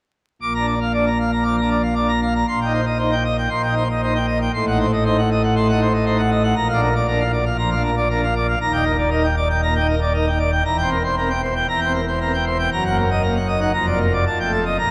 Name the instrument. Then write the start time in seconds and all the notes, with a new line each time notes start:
pipe organ
0.42 A#1 A#2 D6
0.54 A#5
0.59 D4
0.68 D5
0.81 F5
0.94 D4 D5
1.07 A#5
1.20 F5
1.32 A#5
1.44 F3 D6
1.58 A#5
1.62 D4
1.70 D5
1.83 F5
1.95 D4 D5
2.09 A#5
2.22 F5
2.35 A#5
2.48 A#1 A#2 C6
2.61 G5
2.65 D#4
2.74 C5
2.86 D#5
2.98 D#4 C5
3.12 G5
3.25 D#5
3.38 G5
3.50 A#1 A#2 C6
3.63 G5
3.68 D#4
3.77 C5
3.91 D#5
4.02 D#4 C5
4.15 G5
4.27 D#5
4.41 G5
4.54 A1 A2 C6
4.67 D#4 F#5
4.80 C5
4.93 D#5
5.05 D#4 C5
5.18 F#5
5.31 D#5
5.43 F#5
5.56 A3 C6
5.69 D#4 F#5
5.81 C5
5.93 D#5
6.06 D#4 C5
6.18 F#5
6.31 D#5
6.44 F#5
6.55 A#1 A#2 A#5
6.69 F5
6.73 D4
6.83 A#4
6.96 D5
7.08 D4 A#4
7.20 F5
7.33 D5
7.45 F5
7.58 F3 A#5
7.71 F5
7.75 D4
7.84 A#4
7.97 D5
8.10 D4 A#4
8.24 F5
8.36 D5
8.48 F5
8.61 D#1 D#2 A#5
8.73 D#4 G5
8.85 A#4
8.98 D5
9.10 D#4 A#4
9.24 G5
9.37 D5
9.50 G5
9.63 A#2 A#5
9.76 G5
9.80 D#4
9.88 A#4
10.02 D5
10.14 D#4 A#4
10.27 G5
10.39 D5
10.52 G5
10.65 E1 E2 A#5
10.78 G5
10.82 C4
10.91 A#4
11.04 C5
11.17 C4 A#4
11.30 G5
11.43 C5
11.55 G5
11.68 E1 E2 A#5
11.81 G5
11.85 C4
11.94 A#4
12.08 C5
12.21 C4 A#4
12.34 G5
12.46 C5
12.59 G5
12.72 F#1 F#2 A#5
12.86 A#3 F#5
12.99 A#4
13.11 D#5
13.22 A#3 A#4
13.36 F#5
13.48 D#5
13.56 D#4
13.61 F#5
13.74 F1 F2 A#5
13.87 D5
13.91 A#3
14.01 A#4
14.13 D5
14.26 F1 F2 A5
14.40 G5
14.44 A3
14.52 A4
14.65 D#5
14.79 A#1 A#2 A#5